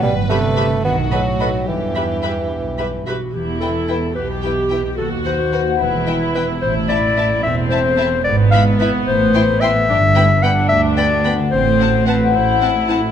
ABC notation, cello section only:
X:1
M:6/8
L:1/8
Q:3/8=73
K:Em
V:1 name="Cello section" clef=bass
B,, C,2 ^D, A,,2 | G,,4- G,, z | E,,3 B,,3 | ^D,,3 E,,3 |
A,,3 E,,3 | ^G,,3 A,,3 | [K:G] G,,3 D,,3 | A,,3 A,,3 |]